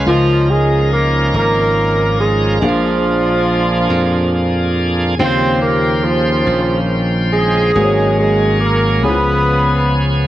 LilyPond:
<<
  \new Staff \with { instrumentName = "Grand piano" } { \time 6/8 \key des \major \tempo 4. = 47 <des' f' bes' ees''>2. | <d' aes' bes' f''>2. | <des c'' f'' g''>2. | <bes ges' aes' c'' des''>4. <ces' fes' f' aes' des''>4. | }
  \new Staff \with { instrumentName = "Grand piano" } { \clef bass \time 6/8 \key des \major des4. r4. | bes,4. r4. | ees4. r4. | aes,4. des4. | }
  \new Staff \with { instrumentName = "Horn section" } { \time 6/8 \key des \major << { f'8 aes'8 bes'8 bes'4 aes'8 | f'2~ f'8 r8 | c''8 bes'8 f'4 r8 aes'8~ | aes'8 aes'8 bes'8 ces''4 r8 | } \\ { <aes bes>4. <ees' f'>4. | <aes d'>2~ <aes d'>8 r8 | <f' g'>4 <bes des'>4. <des' ees'>8~ | <des' ees'>4 r8 <f' aes'>4. | } >> }
  \new Staff \with { instrumentName = "Tonewheel organ" } { \time 6/8 \key des \major <f des' ees' aes' bes'>2. | <f bes d' ges' aes'>2. | <des f c'' g''>2. | <ges bes des' aes'>4. <f ces' des' aes'>4. | }
  \new Staff \with { instrumentName = "Tenor saxophone" } { \clef bass \time 6/8 \key des \major f8 aes8 bes8 bes4 aes8 | f2~ f8 r8 | c'8 bes8 f4 r8 aes8~ | aes8 aes8 bes8 ces'4 r8 | }
  \new Staff \with { instrumentName = "Slap bass" } { \clef bass \time 6/8 \key des \major des,4. aes,,4. | bes,,4. f,4. | ees,4. bes,,4. | aes,,4. des,4. | }
>>